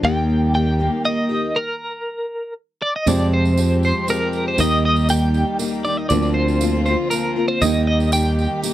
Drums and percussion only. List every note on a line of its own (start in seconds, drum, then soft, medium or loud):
3.07 tambourine medium
3.20 tambourine soft
3.45 tambourine soft
3.57 tambourine medium
3.83 tambourine soft
4.08 tambourine medium
4.33 tambourine soft
4.58 tambourine medium
4.71 tambourine soft
4.96 tambourine soft
5.09 tambourine medium
5.34 tambourine soft
5.59 tambourine medium
5.85 tambourine soft
6.10 tambourine medium
6.22 tambourine soft
6.48 tambourine soft
6.61 tambourine medium
6.86 tambourine soft
7.11 tambourine medium
7.62 tambourine medium
8.00 tambourine soft
8.12 tambourine loud
8.25 tambourine soft
8.39 tambourine soft
8.64 tambourine medium